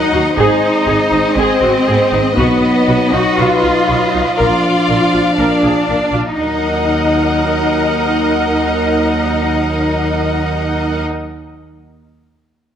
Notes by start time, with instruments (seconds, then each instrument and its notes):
Already playing: french horn section F#3 D#4, cello section D#4, violin section D#5 F#5
0.13 double bass section D#2, viola section F#4
0.36 double bass section G#1, french horn section G#3 C4, cello section D#4, viola section G#4, violin section C5 D#5
0.87 double bass section G#1, viola section G#4
1.12 double bass section G#1, viola section D#4
1.37 double bass section G#1, cello section C4, viola section G#4
1.62 double bass section G#1, viola section F#4
1.88 double bass section G#1, viola section G#4
2.12 double bass section G#1, viola section D#4
2.34 double bass section B1, french horn section F#3 D#4, cello section B3, viola section F#4, violin section B4, taiko
2.87 double bass section B1, viola section F#4
3.12 double bass section B1, viola section D#4, cello section F#4
3.37 double bass section B1, cello section F4, viola section F#4
3.63 double bass section B1, viola section F4
3.87 double bass section B1, viola section F#4
4.12 double bass section B1, viola section D#4
4.37 double bass section A#1, french horn section F3 D4, cello section F4, viola section A#4, violin section D5 F5
4.89 double bass section A#1, viola section A#4
5.13 double bass section A#1, viola section F4
5.37 double bass section A#1, cello section D4, viola section A#4
5.63 double bass section A#1, viola section G#4
5.89 double bass section A#1, viola section A#4
6.13 double bass section A#1, viola section F4
6.36 double bass section D#2, french horn section F#3 D#4, cello section D#4, viola section A#4, violin section D#5 F#5